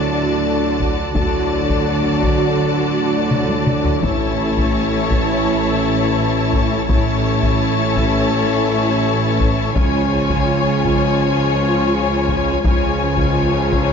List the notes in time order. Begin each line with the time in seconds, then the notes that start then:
Already playing: D2 A2 D3 F#3 A3 D4 F#4 A4 D5 A5
0.80 taiko
1.13 D2 A3 D4 F#4 A4 D5 A5, taiko
1.17 A2 D3 F#3 F#4
1.69 taiko
2.23 taiko
3.31 taiko mid
3.49 taiko high
3.67 taiko mid
3.85 taiko low
4.01 A1 A2 E3 A3 C#4 E4 A4 C#5 E5 A5, taiko
4.58 taiko
5.11 taiko
6.54 taiko
6.88 A1 A2 E3 A3 C#4 E4 A4 C#5 E5 A5, taiko
6.92 A2
7.43 taiko
7.96 taiko
9.40 taiko
9.76 C#2 C#3 F3 G#3 C#4 F4 G#4 C#5 G#5, taiko
10.30 taiko
10.85 taiko
12.28 taiko
12.62 C#2 C#3 F3 G#3 C#4 F4 G#4 C#5 G#5, taiko, cymbal swell
13.18 taiko
13.73 taiko